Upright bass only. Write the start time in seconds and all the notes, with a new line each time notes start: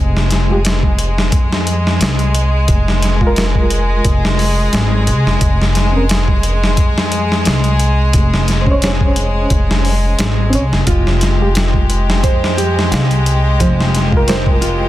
Already playing: F1
1.32 F2
2.00 C2
2.69 F1
4.05 F1
4.73 G#1
5.07 C2
5.26 F1
5.41 F1
6.78 F2
7.46 C2
8.14 F1
9.51 F1
10.19 G#1
10.53 C2
10.72 F1
10.87 F1
12.24 F2
12.91 C2
13.60 F1